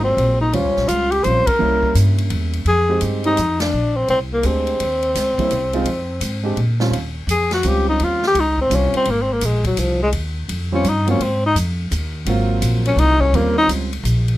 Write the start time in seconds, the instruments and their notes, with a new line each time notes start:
Already playing: upright bass G#1, grand piano F#3 A#3 C4 F4
0.04 tenor saxophone C4
0.17 upright bass A#1, ride
0.41 tenor saxophone D#4
0.52 upright bass D#2, grand piano G3 C#4 F4 C5, tenor saxophone C#4, ride
0.64 upright bass C#2
0.76 upright bass A#1, snare
0.88 upright bass C#2, tenor saxophone F4, hi-hat pedal, ride
1.11 tenor saxophone G4, ride
1.24 upright bass A#1, grand piano G3 C4 C#4 F4, tenor saxophone C5, hi-hat pedal, ride
1.47 tenor saxophone A#4, muted upright bass stroke, kick, ride
1.59 upright bass C2, grand piano G3 A#3 C#4 E4
1.83 kick
1.95 upright bass G2, hi-hat pedal, ride
2.18 ride
2.30 upright bass E2, ride
2.53 ride
2.65 upright bass F2, tenor saxophone G#4, ride
2.89 grand piano G#3 C4 D#4 G4
3.01 upright bass G2, hi-hat pedal, ride
3.24 grand piano G#3 C4 D#4 G4, tenor saxophone D#4, ride
3.37 upright bass F2, hi-hat pedal, ride
3.60 tenor saxophone D4, snare, ride
3.72 upright bass A#1
3.96 tenor saxophone C4
4.08 upright bass C2, tenor saxophone C4, ride
4.33 tenor saxophone A#3
4.43 upright bass D2, grand piano G#3 C4 D4 G4, tenor saxophone C4, hi-hat pedal, ride
4.67 ride
4.80 upright bass D#2, ride
5.03 ride
5.15 upright bass C#2, snare, hi-hat pedal, ride
5.37 grand piano G3 A#3 C#4 E4, muted upright bass stroke, kick, ride
5.51 upright bass C2, hi-hat pedal, ride
5.73 grand piano G#3 C4 D#4 F4, ride
5.85 upright bass F2, ride
6.20 upright bass G#2, hi-hat pedal, ride
6.43 grand piano G#3 C4 D4 G4
6.56 upright bass A#2, ride
6.80 grand piano D#2 G3 C4 C#4 F4, snare
6.91 upright bass D#2, ride
7.27 upright bass F2, tenor saxophone G#4, hi-hat pedal, ride
7.51 tenor saxophone F#4, snare, ride
7.63 upright bass C#2, grand piano G3 C4 C#4 F4, hi-hat pedal, ride
7.68 tenor saxophone G4
7.89 tenor saxophone D#4
8.00 upright bass D#2, ride
8.04 tenor saxophone F4
8.23 snare
8.27 tenor saxophone G4
8.35 upright bass C#2, ride
8.40 tenor saxophone D#4
8.58 tenor saxophone C4, kick
8.70 upright bass C2, grand piano G3 C4 C#4 F4, hi-hat pedal, ride
8.75 tenor saxophone C#4
8.94 tenor saxophone C4, ride
9.05 upright bass G#1, ride
9.11 tenor saxophone A#3
9.22 tenor saxophone C4
9.33 tenor saxophone A#3
9.41 upright bass A#1, tenor saxophone G#3, hi-hat pedal, ride
9.64 tenor saxophone F#3, kick, ride
9.77 upright bass C2, tenor saxophone F3, hi-hat pedal, ride
10.03 tenor saxophone G#3
10.13 upright bass D#2, ride
10.49 upright bass F2, ride
10.72 grand piano G3 C4 C#4 F4, tenor saxophone C#4
10.84 upright bass G2, hi-hat pedal, ride
10.88 tenor saxophone D#4
11.07 grand piano F#3 A#3 C4 F4, tenor saxophone C#4, ride
11.19 upright bass G#2, tenor saxophone C4, ride
11.46 tenor saxophone D#4
11.55 upright bass F2, hi-hat pedal, ride
11.91 upright bass D#2, hi-hat pedal, ride
12.25 upright bass G#1, grand piano F#3 A#3 C4 F4, ride
12.61 upright bass A#1, hi-hat pedal, ride
12.85 tenor saxophone C#4, ride
12.96 upright bass C2, tenor saxophone D#4, ride
13.20 tenor saxophone C#4, kick
13.32 upright bass D#2, grand piano G3 C4 C#4 F4, tenor saxophone A#3, ride
13.58 tenor saxophone D#4
13.67 upright bass C#2, hi-hat pedal, ride
13.93 ride
14.03 upright bass A#1, hi-hat pedal, ride
14.28 ride